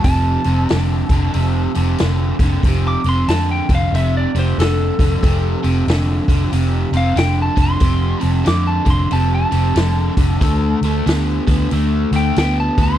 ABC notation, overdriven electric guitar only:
X:1
M:4/4
L:1/8
Q:"Swing" 1/4=92
K:Flyd
V:1 name="Overdriven electric guitar" clef=bass
[F,,C,] [F,,C,] [F,,D,] [F,,D,] [F,,C,] [F,,C,] [F,,D,] [F,,D,] | [F,,C,] [F,,C,] [F,,D,] [F,,D,] [F,,C,] [F,,C,] [F,,D,] [F,,D,] | [F,,C,] [F,,C,] [F,,D,] [F,,D,] [F,,C,] [F,,C,] [F,,D,] [F,,D,] | [F,,C,] [F,,C,] [F,,D,] [F,,D,] [F,,C,] [F,,C,] [F,,D,] [F,,D,] |
[D,A,] [D,A,] [D,B,] [D,B,] [D,A,] [D,A,] [D,B,] [D,B,] |]